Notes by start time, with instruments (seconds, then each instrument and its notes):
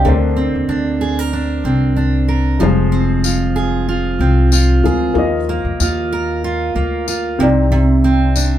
Already playing: steel-string acoustic guitar C4 D4 G4, upright piano D#5
0.05 upright bass D2, steel-string acoustic guitar D3, upright piano A#3 C4 C5
0.13 upright piano D4
0.37 steel-string acoustic guitar C4
0.55 upright bass D#2
0.69 upright bass D2, steel-string acoustic guitar D4
1.01 steel-string acoustic guitar G#4
1.19 steel-string acoustic guitar A#4
1.33 steel-string acoustic guitar D4
1.64 upright bass C2, steel-string acoustic guitar C4
1.96 steel-string acoustic guitar D4
2.28 steel-string acoustic guitar A#4
2.59 upright bass F1, steel-string acoustic guitar F3, upright piano G3 F4
2.63 upright piano G#3 C5
2.92 steel-string acoustic guitar C4
3.24 steel-string acoustic guitar F4, tambourine
3.56 steel-string acoustic guitar G#4
3.89 steel-string acoustic guitar F4
4.19 upright bass C2, steel-string acoustic guitar C4
4.52 steel-string acoustic guitar F4, tambourine
4.83 upright bass D2, upright piano G#3 F4 A#4, steel-string acoustic guitar G#4
5.14 upright bass D#2, upright piano A#3 F4
5.18 upright piano D#5
5.49 steel-string acoustic guitar A#3
5.65 upright bass F2
5.80 upright bass D#2, steel-string acoustic guitar F4, tambourine
6.12 steel-string acoustic guitar A#4
6.44 steel-string acoustic guitar F4
6.76 upright bass D2, steel-string acoustic guitar A#3
7.08 steel-string acoustic guitar F4, tambourine
7.39 upright bass C2, steel-string acoustic guitar C3, upright piano C4 D#4 D5
7.72 steel-string acoustic guitar C3
8.04 steel-string acoustic guitar C4
8.36 steel-string acoustic guitar D4, tambourine